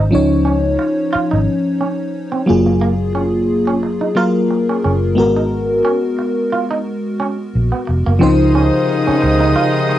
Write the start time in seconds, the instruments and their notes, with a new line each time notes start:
0.00 fingered electric bass G#1
0.11 fingered electric bass C#2, fm electric piano F3 C#4 D#4 C#5
0.45 clean electric guitar C#4
0.79 muted clean electric guitar stroke
1.13 clean electric guitar F4, muted fingered electric bass stroke
1.31 fingered electric bass G#1, clean electric guitar D#4
1.81 clean electric guitar C#4
2.32 clean electric guitar C4
2.46 fingered electric bass F#1, fm electric piano F#3 A#3 F4 G#4, muted clean electric guitar stroke
2.66 clean electric guitar A#3
2.81 clean electric guitar A#3
3.15 clean electric guitar C#4
3.67 clean electric guitar C#4
3.83 muted clean electric guitar stroke
4.01 clean electric guitar D#4
4.15 fm electric piano F#3 A#3 F4 A#4, clean electric guitar F4
4.51 muted clean electric guitar stroke
4.69 clean electric guitar C#4
4.84 fingered electric bass F#1, clean electric guitar C#4
5.15 fingered electric bass G#1, fm electric piano G#3 B3 F#4, muted clean electric guitar stroke
5.19 fm electric piano A#4
5.37 clean electric guitar D#4
5.85 clean electric guitar C#4
6.19 muted clean electric guitar stroke
6.52 clean electric guitar F4
6.71 clean electric guitar D#4
7.20 clean electric guitar C#4
7.55 fingered electric bass A#1
7.72 clean electric guitar B3
7.87 fingered electric bass F1, muted clean electric guitar stroke
8.06 fingered electric bass F#1, clean electric guitar A#3
8.19 fingered electric bass C#2, horn section C3 D#3 G#3 D#4, fm electric piano C#3 F3 D#4 C5, clean electric guitar C4, string section D#5 F5 C6 D#6
8.55 clean electric guitar C#4
9.07 clean electric guitar C#4, muted fingered electric bass stroke
9.22 fingered electric bass C#2, muted clean electric guitar stroke
9.40 clean electric guitar D#4
9.56 clean electric guitar F4
9.89 muted clean electric guitar stroke